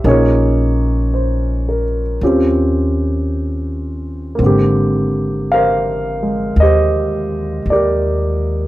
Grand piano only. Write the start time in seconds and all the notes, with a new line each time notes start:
0.05 A#3 C#4 D#4 G#4 C#5
0.10 F4 G#4
1.14 C5
1.69 A#4
2.23 C4 C#4 F4 G4
4.35 A#3 C4
4.43 D3 G4
5.52 A#4 C5 F5
6.23 G#3
6.60 G4 C5 D#5
7.70 G4 A#4 D5